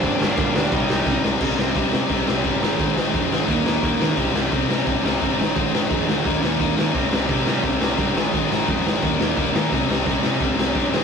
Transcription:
<<
  \new Staff \with { instrumentName = "Lead electric guitar" } { \time 4/4 \key c \minor \tempo 4 = 173 <c' c''>8 <bes bes'>4 <d' d''>8 <ees' ees''>4. r8 | r1 | r1 | r1 |
r1 | r1 | r1 | r1 | }
  \new Staff \with { instrumentName = "Distorted electric guitar" } { \clef bass \time 4/4 \key c \minor <g, d g bes d'>8 <g, d g bes d'>8 <g, d g bes d'>8 <g, d g bes d'>8 <c g c' ees'>8 <c g c' ees'>8 <c g c' ees'>8 <c g c' ees'>8 | <c g c' ees'>8 <c g c' ees'>8 <c g c' ees'>8 <c g c' ees'>8 <c g c' ees'>8 <c g c' ees'>8 <c g c' ees'>8 <aes, ees aes c' ees'>8 | <aes, ees aes c' ees'>8 <aes, ees aes c' ees'>8 <aes, ees aes c' ees'>8 <aes, ees aes c' ees'>8 <ees g bes ees'>8 <ees g bes ees'>8 <ees g bes ees'>8 <ees g bes ees'>8 | <c g c' ees'>8 <c g c' ees'>8 <c g c' ees'>8 <c g c' ees'>8 <c g c' ees'>8 <c g c' ees'>8 <c g c' ees'>8 <aes, ees aes c' ees'>8 |
<aes, ees aes c' ees'>8 <aes, ees aes c' ees'>8 <aes, ees aes c' ees'>8 <aes, ees aes c' ees'>8 <ees g bes ees'>8 <ees g bes ees'>8 <ees g bes ees'>8 <ees g bes ees'>8 | <c g c' ees'>8 <c g c' ees'>8 <c g c' ees'>8 <c g c' ees'>8 <c g c' ees'>8 <c g c' ees'>8 <c g c' ees'>8 <aes, ees aes c' ees'>8 | <aes, ees aes c' ees'>8 <aes, ees aes c' ees'>8 <aes, ees aes c' ees'>8 <aes, ees aes c' ees'>8 <ees g bes ees'>8 <ees g bes ees'>8 <ees g bes ees'>8 <ees g bes ees'>8 | <c g c' ees'>8 <c g c' ees'>8 <c g c' ees'>8 <c g c' ees'>8 <c g c' ees'>8 <c g c' ees'>8 <c g c' ees'>8 <aes, ees aes c' ees'>8 | }
  \new Staff \with { instrumentName = "Overdriven electric guitar" } { \clef bass \time 4/4 \key c \minor <g, d g>8 <g, d g>8 <g, d g>8 <g, d g>8 <c g c'>8 <c g c'>8 <c g c'>8 <c g c'>8 | <c g c'>8 <c g c'>8 <c g c'>8 <c g c'>8 <c g c'>8 <c g c'>8 <c g c'>8 <aes, ees aes>8 | <aes, ees aes>8 <aes, ees aes>8 <aes, ees aes>8 <aes, ees aes>8 <ees bes ees'>8 <ees bes ees'>8 <ees bes ees'>8 <ees bes ees'>8 | <c g c'>8 <c g c'>8 <c g c'>8 <c g c'>8 <c g c'>8 <c g c'>8 <c g c'>8 <aes, ees aes>8 |
<aes, ees aes>8 <aes, ees aes>8 <aes, ees aes>8 <aes, ees aes>8 <ees bes ees'>8 <ees bes ees'>8 <ees bes ees'>8 <ees bes ees'>8 | <c g c'>8 <c g c'>8 <c g c'>8 <c g c'>8 <c g c'>8 <c g c'>8 <c g c'>8 <aes, ees aes>8 | <aes, ees aes>8 <aes, ees aes>8 <aes, ees aes>8 <aes, ees aes>8 <ees bes ees'>8 <ees bes ees'>8 <ees bes ees'>8 <ees bes ees'>8 | <c g c'>8 <c g c'>8 <c g c'>8 <c g c'>8 <c g c'>8 <c g c'>8 <c g c'>8 <aes, ees aes>8 | }
  \new Staff \with { instrumentName = "Picked electric bass" } { \clef bass \time 4/4 \key c \minor g,,8 g,,8 g,,8 d,8 c,8 c,8 c,8 c,8 | c,8 c,8 c,8 c8 c,8 c,8 g,,8 aes,,8 | aes,,8 aes,,8 f,8 aes,,8 ees,8 ees,8 ees,8 ees8 | c,8 c,8 c,8 c8 c,8 c,8 g,,8 aes,,8 |
aes,,8 aes,,8 f,8 d,8 ees,8 ees,8 ees,8 ees8 | c,8 c,8 c,8 c8 c,8 c,8 g,8 aes,,8 | aes,,8 aes,,8 f,8 aes,,8 ees,8 ees,8 ees,8 ees8 | c,8 c,8 c,8 c8 c,8 c,8 g,8 aes,,8 | }
  \new DrumStaff \with { instrumentName = "Drums" } \drummode { \time 4/4 <cymc bd>8 sn8 <cymc bd>8 sn8 <cymc bd>8 sn8 <bd sn>8 sn8 | <cymc bd>8 sn8 <hho bd>8 sn8 <hho bd>8 sn8 <hho bd>8 sn8 | <hho bd>8 sn8 <hho bd>8 sn8 <hho bd>8 sn8 <hho bd>8 sn8 | <hho bd>8 sn8 <hho bd>8 sn8 <hho bd>8 sn8 <hho bd>8 sn8 |
<hho bd>8 sn8 <hho bd>8 sn8 <hho bd>8 sn8 <hho bd>8 sn8 | <hho bd>8 sn8 <hho bd>8 sn8 <hho bd>8 sn8 <hho bd>8 sn8 | <hho bd>8 sn8 <hho bd>8 sn8 <hho bd>8 sn8 <hho bd>8 sn8 | <hho bd>8 sn8 <hho bd>8 sn8 <hho bd>8 sn8 <hho bd>8 sn8 | }
>>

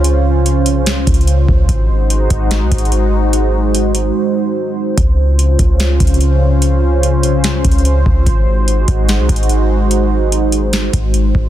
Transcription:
<<
  \new Staff \with { instrumentName = "Analog synth pad" } { \time 4/4 \key des \major \tempo 4 = 146 << { c''1 | c''1~ | c''1~ | c''1~ |
c''1~ | c''1~ | c''1 | } \\ { <des des' f'>1 | <aes ees' ges'>1~ | <aes ees' ges'>1 | <des des' f'>1~ |
<des des' f'>1 | <aes ees' ges'>1~ | <aes ees' ges'>1 | } >> }
  \new Staff \with { instrumentName = "808-style bass" } { \clef bass \time 4/4 \key des \major des,4. c,8 des,8 des,4 des,8 | aes,,4. aes,,8. c,16 aes,,4.~ | aes,,2 r2 | des,4. des,4 des,4.~ |
des,4. c,8 des,8 des,4 des,8 | aes,,4. aes,,8. c,16 aes,,4.~ | aes,,2~ aes,,8 aes,,4 aes,,8 | }
  \new DrumStaff \with { instrumentName = "Drums" } \drummode { \time 4/4 hh4 hh8 hh8 \tuplet 3/2 { <hh sn>16 r16 r16 <hh bd>16 hh16 hh16 } hh8 bd8 | <hh bd>4 hh8 <hh bd>8 \tuplet 3/2 { <hh sn>16 r16 r16 <hh bd>16 hh16 hh16 } hh4 | hh4 hh8 hh8 r4 r4 | <hh bd>4 hh8 <hh bd>8 \tuplet 3/2 { <hh sn>16 r16 r16 <hh bd>16 hh16 hh16 } hh4 |
hh4 hh8 hh8 \tuplet 3/2 { <hh sn>16 r16 r16 <hh bd>16 hh16 hh16 } hh8 bd8 | <hh bd>4 hh8 <hh bd>8 \tuplet 3/2 { <hh sn>16 r16 r16 <hh bd>16 hh16 hh16 } hh4 | hh4 hh8 hh8 <hh sn>8 <hh bd>8 hh8 bd8 | }
>>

